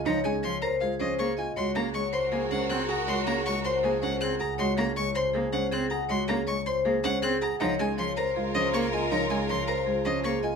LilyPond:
<<
  \new Staff \with { instrumentName = "Violin" } { \time 4/4 \key ges \lydian \tempo 4 = 159 bes''8 aes''8 c'''8 bes''8 f''8 ees''8 des'''8 aes''8 | c'''8 bes''8 des'''8 c'''8 aes''8 ges''8 ges'''8 bes''8 | c'''8 bes''8 des'''8 c'''8 aes''8 ges''8 ges'''8 bes''8 | c'''8 bes''8 des'''8 c'''8 r8 ges''8 ges'''8 bes''8 |
c'''8 bes''8 des'''8 c'''8 r8 ges''8 ges'''8 bes''8 | bes''8 aes''8 c'''8 bes''8 r8 ees''8 des'''8 aes''8 | bes''8 aes''8 c'''8 bes''8 r8 ees''8 des'''8 aes''8 | }
  \new Staff \with { instrumentName = "Vibraphone" } { \time 4/4 \key ges \lydian des''8 aes'8 des''8 c''8 aes'8 c''8 aes'8 ees''8 | des''8 aes'8 des''8 c''8 aes'8 c''8 aes'8 ges''8 | des''8 aes'8 des''8 c''8 aes'8 c''8 aes'8 ges''8 | des''8 aes'8 des''8 c''8 aes'8 c''8 aes'8 ges''8 |
des''8 aes'8 des''8 c''8 aes'8 c''8 aes'8 ges''8 | des''8 aes'8 des''8 c''8 aes'8 c''8 aes'8 ees''8 | des''8 aes'8 des''8 c''8 aes'8 c''8 aes'8 ees''8 | }
  \new Staff \with { instrumentName = "String section" } { \time 4/4 \key ges \lydian r1 | <ges' bes'>1~ | <ges' bes'>2.~ <ges' bes'>8 r8 | r1 |
r1 | <f' bes'>1~ | <f' bes'>2.~ <f' bes'>8 r8 | }
  \new Staff \with { instrumentName = "Grand piano" } { \time 4/4 \key ges \lydian ees'8 des'8 r8 bes'8 f'8 des'8 r8 f'8 | ges'8 des'8 r8 c''8 aes'8 des'8 r8 aes'8 | ges'8 des'8 r8 c''8 aes'8 des'8 r8 aes'8 | ges'8 des'8 r8 c''8 aes'8 des'8 r8 aes'8 |
ges'8 des'8 r8 c''8 aes'8 des'8 r8 aes'8 | ees'8 des'8 r8 bes'8 f'8 des'8 r8 f'8 | ees'8 des'8 r8 bes'8 f'8 des'8 r8 f'8 | }
  \new Staff \with { instrumentName = "Cello" } { \clef bass \time 4/4 \key ges \lydian f8 aes8 f8 r8 aes8 f8 bes8 r8 | aes8 bes8 aes8 r8 bes8 aes8 c'8 r8 | aes8 bes8 aes8 r8 bes8 aes8 c'8 r8 | aes8 bes8 aes8 r8 bes8 aes8 c'8 r8 |
aes8 bes8 aes8 r8 bes8 aes8 c'8 r8 | f8 aes8 f8 r8 aes8 f8 bes8 r8 | f8 aes8 f8 r8 aes8 f8 bes8 r8 | }
  \new Staff \with { instrumentName = "Double bass" } { \clef bass \time 4/4 \key ges \lydian des,1 | des,1~ | des,1~ | des,1~ |
des,1 | des,1~ | des,1 | }
>>